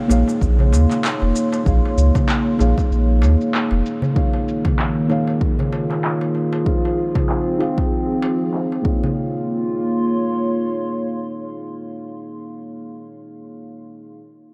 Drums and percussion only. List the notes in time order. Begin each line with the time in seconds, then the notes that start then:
0.10 darbuka ka, shaker
0.28 darbuka tek, shaker
0.41 kick, shaker
0.59 darbuka ka, darbuka dum
0.73 darbuka tek, shaker
0.91 clap, darbuka tek, shaker
1.05 clap, shaker
1.22 darbuka tek
1.35 darbuka ka, shaker
1.52 darbuka ka, shaker
1.66 kick, shaker
1.85 darbuka ka
1.98 shaker
2.15 kick, darbuka tek, darbuka dum, shaker
2.29 clap, shaker
2.59 darbuka ka, shaker
2.78 kick, darbuka tek, shaker
2.92 shaker
3.22 darbuka tek, shaker
3.41 shaker
3.55 clap, shaker
3.71 darbuka tek
3.86 shaker
4.02 darbuka dum, shaker
4.16 kick, shaker
4.33 darbuka ka
4.48 shaker
4.65 kick, darbuka tek, darbuka dum, shaker
4.79 clap, shaker
5.10 darbuka ka, shaker
5.28 darbuka tek, shaker
5.41 kick, shaker
5.59 darbuka ka, darbuka dum
5.73 darbuka tek, shaker
5.91 clap, darbuka tek, shaker
6.04 clap, shaker
6.21 darbuka tek
6.35 darbuka ka, shaker
6.53 darbuka ka
6.66 kick, shaker
6.85 darbuka ka
6.98 shaker
7.15 kick, darbuka tek, darbuka dum
7.29 clap
7.61 darbuka ka
7.78 kick, darbuka tek
7.92 shaker
8.22 darbuka tek
8.54 clap
8.72 darbuka tek
8.85 kick
9.03 darbuka dum